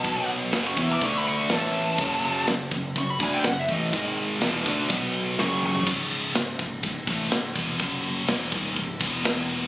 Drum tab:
CC |----------------|x---------------|----------------|x---------------|
RD |x-x-x-x-x-x-x-x-|--x-x-x-x-x-x-x-|x-x-x-x-x-x-----|--x-x-x-x-x-x-x-|
SD |----o-------o---|----o-------o---|----o-------o---|----o-------o---|
T2 |----------------|----------------|--------------o-|----------------|
FT |----------------|----------------|---------------o|----------------|
BD |o-----o-o-------|o-----o-o-o---o-|o-----o-o-------|o-----o-o-o---o-|

CC |----------------|
RD |x-x-x-x-x-x-x-x-|
SD |----o-------o---|
T2 |----------------|
FT |----------------|
BD |o-----o-o-o-----|